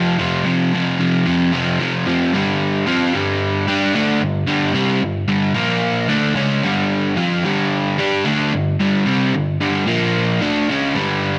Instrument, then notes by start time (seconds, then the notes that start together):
overdriven electric guitar
Already playing: F2 C3 F3
0.19 F2 C3 F3
0.45 F2 C3 F3
0.73 F2 C3 F3
0.99 F2 C3 F3
1.26 F2 C3 F3
1.52 F2 C3 F3
1.79 F2 C3 F3
2.06 F2 C3 F3
2.33 G2 D3 G3
2.86 F3 C4 F4
3.13 G2 D3 G3
3.67 G3 D4 G4
3.94 D3 A3 D4
4.20 G2 D3
4.47 G2 D3 G3
4.74 C3 G3 C4
5.02 G2 D3
5.28 G2 D3 G3
5.54 A#2 F3 A#3
6.08 D3 A3 D4
6.35 C#3 G#3 C#4
6.63 G2 D3 G3
7.16 F3 C4 F4
7.43 G2 D3 G3
7.98 G3 D4 G4
8.25 D3 A3 D4
8.53 G2 D3
8.80 G2 D3 G3
9.06 C3 G3 C4
9.34 G2 D3
9.61 G2 D3 G3
9.86 A#2 F3 A#3
10.41 D3 A3 D4
10.69 C#3 G#3 C#4
10.94 G2 D3 G3